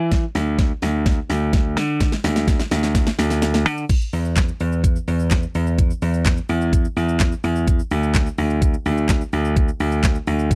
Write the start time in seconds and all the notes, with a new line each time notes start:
Already playing: E3
0.12 kick, snare, closed hi-hat
0.35 D2, snare, open hi-hat
0.59 kick, snare, closed hi-hat
0.82 D2, snare, open hi-hat
1.06 kick, snare, closed hi-hat
1.30 D2, snare, open hi-hat
1.53 kick, snare, closed hi-hat
1.77 D3, snare, open hi-hat
2.00 kick, snare, closed hi-hat, shaker
2.12 snare, shaker
2.24 D2, snare, open hi-hat, shaker
2.36 snare, shaker
2.48 kick, snare, closed hi-hat, shaker
2.59 snare, shaker
2.71 D2, snare, open hi-hat, shaker
2.83 snare, shaker
2.95 kick, snare, closed hi-hat, shaker
3.07 snare, shaker
3.19 D2, snare, open hi-hat, shaker
3.30 snare, shaker
3.42 snare, closed hi-hat, shaker
3.54 snare, shaker
3.66 D3, open hi-hat, shaker
3.78 shaker
3.89 kick, closed hi-hat, crash, shaker
4.01 shaker
4.13 E2, open hi-hat, shaker
4.25 shaker
4.37 kick, snare, clap, closed hi-hat, shaker
4.48 shaker
4.60 E2, open hi-hat, shaker
4.72 shaker
4.84 kick, closed hi-hat, shaker
4.96 shaker
5.08 E2, open hi-hat, shaker
5.20 shaker
5.31 kick, snare, clap, closed hi-hat, shaker
5.43 shaker
5.55 E2, open hi-hat, shaker
5.67 shaker
5.78 kick, closed hi-hat, shaker
5.90 shaker
6.02 E2, open hi-hat, shaker
6.14 shaker
6.26 kick, snare, clap, closed hi-hat, shaker
6.37 shaker
6.49 E2, open hi-hat, shaker
6.61 shaker
6.73 kick, closed hi-hat, shaker
6.85 shaker
6.96 E2, open hi-hat, shaker
7.09 shaker
7.20 kick, snare, clap, closed hi-hat, shaker
7.32 shaker
7.44 E2, open hi-hat, shaker
7.56 shaker
7.67 kick, closed hi-hat, shaker
7.79 shaker
7.91 D2, open hi-hat, shaker
8.03 shaker
8.14 kick, snare, clap, closed hi-hat, shaker
8.26 shaker
8.38 D2, open hi-hat, shaker
8.50 shaker
8.62 kick, closed hi-hat, shaker
8.74 shaker
8.86 D2, open hi-hat, shaker
8.97 shaker
9.09 kick, snare, clap, closed hi-hat, shaker
9.21 shaker
9.33 D2, open hi-hat, shaker
9.45 shaker
9.56 kick, closed hi-hat, shaker
9.68 shaker
9.80 D2, open hi-hat, shaker
9.92 shaker
10.04 kick, snare, clap, closed hi-hat, shaker
10.15 shaker
10.27 D2, open hi-hat, shaker
10.39 shaker
10.51 kick, closed hi-hat, shaker